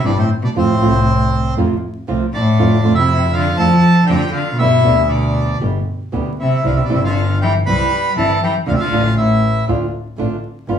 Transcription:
0.04 double bass G1, cello G2, nylon-string guitar C3 E3 G3 D4 E4, bandoneon D4 D5
0.17 cello A2, bandoneon C4 C5
0.43 cello B2, bandoneon D4 D5
0.56 double bass F2, cello A2, nylon-string guitar C3 F3 A3 C4 F4, bandoneon C4 C5
0.81 double bass C2, nylon-string guitar C3 F3 A3 C4 F4
1.57 double bass F2, nylon-string guitar C3 F3 A3 C4 F4
2.08 double bass C2, nylon-string guitar C3 F3 A3 C4 F4
2.33 cello A2, bandoneon D4 D5
2.59 double bass F2, nylon-string guitar D3 A3 C4 F4
2.84 double bass F2, nylon-string guitar D3 A3 C4 F4
2.95 cello C3, bandoneon E4 E5
3.32 cello D3, bandoneon F4 F5
3.56 double bass F2, nylon-string guitar D3 A3 C4 F4, cello F3, bandoneon A4 A5
4.06 double bass F2, cello D3, nylon-string guitar D3 A3 C4, bandoneon G4 G5
4.10 nylon-string guitar F4
4.30 cello D3, bandoneon F5
4.35 bandoneon F4
4.55 cello B2, nylon-string guitar B2, bandoneon E5
4.59 double bass G1, nylon-string guitar D3 G3 B3 G4, bandoneon E4
4.84 double bass D2, nylon-string guitar B2 D3 G3 B3 G4
5.07 cello B2, bandoneon D5
5.11 bandoneon D4
5.61 double bass G1, nylon-string guitar B2 D3 G3 B3 G4
6.12 double bass D2, nylon-string guitar B2 D3 G3 B3 G4
6.39 cello C3, bandoneon E4 E5
6.64 double bass C2, nylon-string guitar C3 E3 G3 C4 E4, cello D3, bandoneon F5
6.75 cello C3, bandoneon E5
6.84 cello B2, bandoneon D5
6.89 double bass G1, nylon-string guitar C3 E3 G3 C4 E4, cello C3
6.95 bandoneon E5
7.04 cello D3, bandoneon F4 F5
7.42 cello E3, bandoneon G4 G5
7.66 double bass C2, nylon-string guitar C3 E3 G3 C4 E4, cello G3, bandoneon B4 B5
8.16 double bass G1, nylon-string guitar C3 E3 G3 C4 E4, cello E3, bandoneon A4 A5
8.43 cello E3, bandoneon G4 G5
8.66 double bass D2, cello D3, nylon-string guitar D3 A3 D4 F4, bandoneon F4 F5
8.73 cello C3, bandoneon E5
8.80 cello D3, bandoneon F4 F5
8.91 double bass A1, nylon-string guitar D3 A3 D4 F4
9.17 cello A2, bandoneon E4 E5
9.67 double bass D2, nylon-string guitar D3 A3 D4 F4
10.17 double bass A1, nylon-string guitar D3 A3 D4 F4
10.68 double bass G1, nylon-string guitar G3 B3 F4

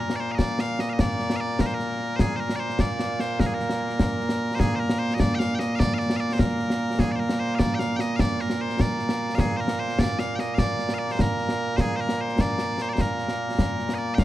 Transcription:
Already playing: bagpipes A#2 A#3
0.00 bagpipes A#4
0.10 snare
0.16 bagpipes D5
0.20 bagpipes C5
0.32 bagpipes D#5 F5
0.38 bagpipes D5, concert bass drum, snare
0.59 bagpipes F5, snare
0.79 bagpipes D#5, snare
0.89 bagpipes D#5 F5
0.99 bagpipes D5, concert bass drum, snare
1.19 snare
1.30 snare
1.36 bagpipes F5
1.40 bagpipes D5
1.59 bagpipes A#4, concert bass drum, snare
1.66 bagpipes C5
1.74 bagpipes A#4
1.79 snare
2.16 bagpipes C5, concert bass drum, snare
2.20 bagpipes G#4
2.36 bagpipes A#4 C5
2.49 snare
2.56 bagpipes C5 D5
2.70 snare
2.79 bagpipes D5, concert bass drum, snare
2.99 snare
3.20 bagpipes C5, snare
3.40 bagpipes A#4, concert bass drum, snare
3.46 bagpipes G#4
3.54 bagpipes A#4
3.60 snare
3.70 snare
3.90 snare
4.00 concert bass drum, snare
4.20 snare
4.29 snare
4.55 bagpipes C5
4.59 bagpipes G#4, concert bass drum, snare
4.75 bagpipes C5
4.80 bagpipes A#4
4.89 snare
4.99 bagpipes C5
5.10 snare
5.14 bagpipes D#5
5.20 bagpipes D5, concert bass drum, snare
5.35 bagpipes F5 G5
5.40 snare
5.55 bagpipes G5
5.59 bagpipes D#5, snare
5.75 bagpipes F5
5.79 bagpipes D5, concert bass drum, snare
5.94 bagpipes F5
5.99 bagpipes D5, snare
6.10 snare
6.16 bagpipes D5 F5
6.29 bagpipes C5, snare
6.39 bagpipes A#4, concert bass drum, snare
6.59 snare
6.70 snare
6.99 bagpipes G#4, concert bass drum, snare
7.11 bagpipes D5
7.15 bagpipes C5
7.20 bagpipes A#4
7.29 snare
7.39 bagpipes C5
7.55 bagpipes D5 F5
7.60 concert bass drum, snare
7.75 bagpipes G5
7.79 bagpipes F5, snare
7.96 bagpipes G5, snare
8.00 bagpipes D#5
8.16 bagpipes F5, concert bass drum, snare
8.20 bagpipes D5
8.40 bagpipes A#4, snare
8.50 snare
8.61 bagpipes C5
8.70 snare
8.80 bagpipes D5, concert bass drum, snare
8.99 snare
9.09 snare
9.35 bagpipes F5, concert bass drum, snare
9.40 bagpipes G#4
9.57 bagpipes A#4 C5
9.68 snare
9.79 bagpipes C5
9.88 snare
9.99 bagpipes D5, concert bass drum, snare
10.19 bagpipes F5, snare
10.36 bagpipes D#5 G5, snare
10.54 bagpipes F5, concert bass drum, snare
10.59 bagpipes D5
10.79 snare
10.89 snare
10.94 bagpipes F5
10.99 bagpipes D5
11.09 bagpipes C5, snare
11.19 bagpipes A#4, concert bass drum, snare
11.38 snare
11.49 snare
11.77 bagpipes C5, concert bass drum, snare
11.81 bagpipes G#4
11.96 bagpipes C5
12.00 bagpipes A#4
12.09 snare
12.21 bagpipes C5
12.29 snare
12.39 bagpipes D5, concert bass drum, snare
12.58 snare
12.78 bagpipes C5, snare
12.89 bagpipes C5 D5
12.98 bagpipes A#4, concert bass drum, snare
13.19 snare
13.28 snare
13.49 snare
13.59 concert bass drum, snare
13.79 snare
13.89 snare
13.95 bagpipes D5 D#5
14.15 bagpipes G5, concert bass drum, snare
14.19 bagpipes F5

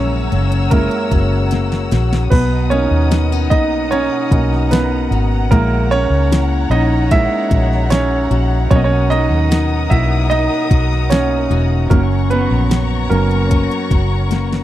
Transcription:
Already playing: fingered electric bass A#1, nylon-string guitar F#2 A#3 C#4, grand piano G#3 A#3 C#4 E4 A#4 C#5, string section C#5 F#5 A#5 E6
0.32 fingered electric bass F#1, nylon-string guitar A#3, closed hi-hat
0.52 closed hi-hat
0.71 grand piano G#3 A#3 E4 A#4, nylon-string guitar C#4, kick, closed hi-hat
0.91 closed hi-hat
1.11 fingered electric bass F#1, nylon-string guitar F#4, kick, closed hi-hat
1.51 nylon-string guitar A#3, snare, closed hi-hat
1.72 snare
1.91 fingered electric bass A#1, nylon-string guitar F#4, snare, closed hi-hat
2.13 snare
2.30 fingered electric bass B1, nylon-string guitar B2, grand piano B3 B4, string section D#5 A#5 D#6, kick, crash
2.70 nylon-string guitar A#3, grand piano C#4 D#4 A#4 C#5, closed hi-hat
2.91 fingered electric bass D#2
3.11 nylon-string guitar C#4, snare, closed hi-hat
3.32 nylon-string guitar D#4
3.50 fingered electric bass B1, nylon-string guitar A#3, grand piano D#4 D#5, kick, closed hi-hat
3.91 grand piano C#4 C#5, nylon-string guitar D#4, closed hi-hat
4.31 fingered electric bass B1, grand piano A#3 C#4 D#4, nylon-string guitar F#4, kick, closed hi-hat
4.53 snare
4.71 nylon-string guitar A#3, grand piano B3 B4, snare, closed hi-hat
5.11 fingered electric bass G#1, nylon-string guitar F#4, closed hi-hat
5.50 fingered electric bass A#1, grand piano G#3 A#3 E4 A#4, nylon-string guitar A#3, string section C#5, kick, closed hi-hat
5.91 nylon-string guitar C#4, grand piano C#4 C#5, closed hi-hat
6.10 fingered electric bass C#2
6.31 nylon-string guitar E4, snare, closed hi-hat
6.70 fingered electric bass A#1, nylon-string guitar C#4, grand piano D#4 D#5, closed hi-hat
7.11 grand piano G#3 A#3 E4 E5, nylon-string guitar E4, kick, closed hi-hat
7.51 fingered electric bass A#1, nylon-string guitar F#4, kick, closed hi-hat
7.72 snare
7.90 nylon-string guitar C#4, grand piano C#4 C#5, snare, closed hi-hat
8.31 fingered electric bass A#1, nylon-string guitar F#4, closed hi-hat
8.71 fingered electric bass B1, nylon-string guitar B2, grand piano F#3 A#3 C#4 C#5, string section A#4 D#6, kick, closed hi-hat
8.75 grand piano D#5
8.84 grand piano C#4 C#5
9.10 nylon-string guitar A#3, grand piano D#4 D#5, closed hi-hat
9.31 fingered electric bass D#2
9.51 nylon-string guitar D#4, snare, closed hi-hat
9.90 fingered electric bass B1, nylon-string guitar A#3, grand piano E4 E5, kick, closed hi-hat
10.30 nylon-string guitar D#4, grand piano D#4 D#5, closed hi-hat
10.70 fingered electric bass B1, nylon-string guitar F#4, kick, closed hi-hat
10.92 snare
11.10 nylon-string guitar A#3, grand piano C#4 C#5, snare, closed hi-hat
11.50 fingered electric bass E1, nylon-string guitar F#4, closed hi-hat
11.90 fingered electric bass F#1, nylon-string guitar F#2, grand piano F#3 A#3 C#4 A#4, string section C#5 A#5 C#6, kick, closed hi-hat
12.30 nylon-string guitar A#3, grand piano B3 B4, closed hi-hat
12.51 fingered electric bass A#1
12.71 nylon-string guitar C#4, snare, closed hi-hat
13.10 fingered electric bass F#1, grand piano F#3 A#3 C#4 A#4, nylon-string guitar A#3, closed hi-hat
13.31 closed hi-hat
13.50 nylon-string guitar C#4, kick, closed hi-hat
13.71 closed hi-hat
13.90 fingered electric bass F#1, nylon-string guitar F#4, kick, closed hi-hat
14.31 nylon-string guitar A#3, snare, closed hi-hat
14.52 snare

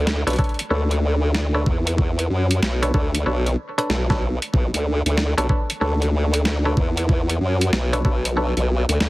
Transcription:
Already playing: wobble bass D2
0.07 snare
0.27 wobble bass B1, clav D4 A4 B4 C#5, closed hi-hat
0.30 closed hi-hat
0.33 closed hi-hat
0.36 clav D4 A4 B4 C#5, kick, closed hi-hat
0.39 closed hi-hat
0.44 closed hi-hat
0.49 closed hi-hat
0.54 closed hi-hat
0.59 closed hi-hat
0.70 wobble bass D2, clav D4 A4 B4 C#5
0.91 closed hi-hat
1.35 snare
1.54 clav D4 A4 B4 C#5
1.66 wobble bass E2, kick
1.87 closed hi-hat
1.98 kick
2.19 closed hi-hat
2.30 wobble bass F#2
2.51 closed hi-hat
2.62 wobble bass B1, snare
2.82 clav D4 A4 B4 C#5, closed hi-hat
2.94 wobble bass D2, clav D4 A4 B4 C#5, kick
3.15 closed hi-hat
3.26 wobble bass B1, clav D4 A4 B4 C#5
3.46 closed hi-hat
3.78 clav D4 A4 B4 C#5, closed hi-hat
3.90 wobble bass B1, snare
4.10 clav D4 A4 B4 C#5, kick, snare
4.42 closed hi-hat
4.54 wobble bass B1, kick
4.73 wobble bass D2, closed hi-hat
5.06 wobble bass D2, closed hi-hat
5.18 snare
5.38 wobble bass B1, clav D4 A4 B4 C#5, closed hi-hat
5.49 clav D4 A4 B4 C#5, kick
5.70 closed hi-hat
5.81 wobble bass D2, clav D4 A4 B4 C#5
6.02 closed hi-hat
6.34 closed hi-hat
6.45 snare
6.65 clav D4 A4 B4 C#5
6.77 wobble bass E2, kick
6.97 closed hi-hat
7.09 kick
7.29 closed hi-hat
7.41 wobble bass F#2
7.61 closed hi-hat
7.73 wobble bass B1, snare
7.93 clav D4 A4 B4 C#5, closed hi-hat
8.05 wobble bass B1, clav D4 A4 B4 C#5, kick
8.25 closed hi-hat
8.37 clav D4 A4 B4 C#5
8.57 wobble bass B1, closed hi-hat
8.89 wobble bass D2, closed hi-hat
9.00 wobble bass D2, snare

